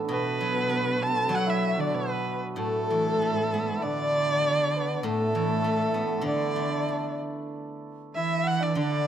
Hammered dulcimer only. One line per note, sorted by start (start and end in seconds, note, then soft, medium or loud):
0.00 2.57 A3 medium
0.00 0.11 B3 medium
0.00 1.46 E4 medium
0.05 1.77 D4 medium
0.11 1.94 B3 medium
0.95 3.68 B4 medium
1.03 3.95 A4 medium
1.33 4.57 F#4 medium
1.47 3.76 E4 medium
1.78 3.83 D4 medium
1.95 4.73 B3 medium
2.57 5.03 A3 medium
3.76 6.19 E4 soft
3.83 6.27 D4 medium
4.74 8.87 B3 medium
5.03 5.12 A3 medium
5.12 5.19 A3 soft
5.20 5.28 A3 medium
5.28 5.34 A3 soft
5.34 5.42 A3 medium
5.42 5.47 A3 soft
5.48 5.56 A3 soft
5.56 5.62 A3 soft
5.62 5.69 A3 soft
5.70 5.77 A3 soft
5.77 5.85 A3 soft
5.85 5.91 A3 soft
5.92 5.99 A3 medium
5.99 6.07 A3 soft
6.07 9.07 A3 medium
6.19 8.16 E4 soft
6.27 8.60 D4 medium
8.16 9.07 E4 medium
8.60 8.77 D4 medium
8.77 9.07 D4 medium